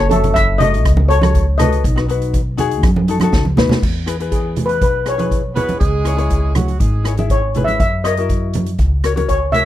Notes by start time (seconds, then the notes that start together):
Already playing: F#1
0.09 F#4 A4 E5, closed hi-hat, high conga
0.24 closed hi-hat, low conga
0.34 E5, kick, cross-stick, closed hi-hat
0.58 F#4 A4 D#5, closed hi-hat, low conga
0.74 closed hi-hat
0.85 C#2, kick, cross-stick, closed hi-hat
0.97 high conga
1.09 F#4 A4 C#5, closed hi-hat
1.21 F#4 A4 C#5, cross-stick, closed hi-hat, high conga
1.35 kick, closed hi-hat
1.58 F#4 A4 B4 D#5, cross-stick, closed hi-hat, low conga
1.72 closed hi-hat
1.84 B1, kick, closed hi-hat
1.96 D#4 F#4 B4, cross-stick
2.08 D#4 F#4 B4, closed hi-hat
2.22 closed hi-hat
2.34 kick, closed hi-hat
2.57 D#4 F#4 G#4, closed hi-hat, low conga
2.71 closed hi-hat
2.83 F#2, kick, cross-stick, closed hi-hat, high conga
2.96 high conga
3.08 D#4 F#4 A4, closed hi-hat
3.20 D#4 F#4 A4, cross-stick, closed hi-hat, high conga
3.32 C#2, kick, snare, high conga
3.45 high conga
3.57 D#2 D#4 F#4 B4, snare, low conga
3.69 snare, low conga
3.82 E2, kick, crash
4.06 E4 G#4 B4, cross-stick, closed hi-hat
4.20 E4 G#4 B4, closed hi-hat
4.32 G#4, kick, closed hi-hat
4.56 closed hi-hat, low conga
4.66 B4, closed hi-hat
4.81 B1 B4, kick, closed hi-hat
5.05 E4 G#4 B4 C#5, cross-stick, closed hi-hat
5.18 E4 G#4 B4, closed hi-hat, high conga
5.31 kick, closed hi-hat
5.54 B3 E4 G#4 B4 C#5, closed hi-hat, low conga
5.68 closed hi-hat, high conga
5.79 C#2 G#3 G#4, kick, closed hi-hat
6.04 E4 G#4 C#5, cross-stick, closed hi-hat
6.17 E4 G#4 C#5, closed hi-hat
6.30 kick, closed hi-hat
6.55 F#3 F#4, cross-stick, closed hi-hat, high conga, low conga
6.68 closed hi-hat
6.79 G#1 G#3 G#4, kick, closed hi-hat
7.04 E4 G#4 C#5, cross-stick, closed hi-hat
7.17 E4 G#4 E5, closed hi-hat, high conga
7.30 C#5, kick, closed hi-hat
7.54 E4 G#4 B4, closed hi-hat, low conga
7.64 E5, closed hi-hat, high conga
7.80 F#2 E5, kick, closed hi-hat
8.04 F#4 A#4 C#5 D#5, cross-stick, closed hi-hat
8.17 E4 F#4 A#4, closed hi-hat
8.29 kick, closed hi-hat
8.53 closed hi-hat, high conga, low conga
8.66 closed hi-hat
8.78 C#2, kick, closed hi-hat
9.04 F#4 A#4 C#5, cross-stick, closed hi-hat
9.16 F#4 A#4 C#5, closed hi-hat, high conga
9.29 C#5, kick, closed hi-hat
9.52 F#4 A#4 C#5 E5, closed hi-hat, low conga